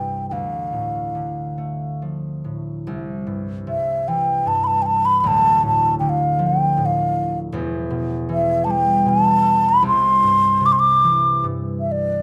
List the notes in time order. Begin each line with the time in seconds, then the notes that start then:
Already playing: C2 G2 E3 G3 G5
0.29 D2 F5 G5
0.72 A2
1.15 D3
1.58 A3
2.02 F3
2.44 A2
2.87 C2
3.27 G2
3.67 C3 E5
4.08 E3 G5
4.45 G2 A5
4.64 A5 B5
4.82 G5 A5
5.05 B5
5.20 D1 D2 B5
5.27 A5
5.63 A2
5.67 A5
6.00 D3 G5
6.09 F5
6.39 F3
6.47 G5
6.77 A2
6.86 F5
7.52 E1 E2
7.90 B2
8.29 E3 E5
8.64 G3 A5
8.71 G5
9.06 B2 A5
9.69 B5
9.82 C2
9.87 C6
10.23 G2
10.61 C3
10.66 D6
10.72 C6
10.79 D6
11.04 E3
11.44 G2
11.80 E5
11.92 D5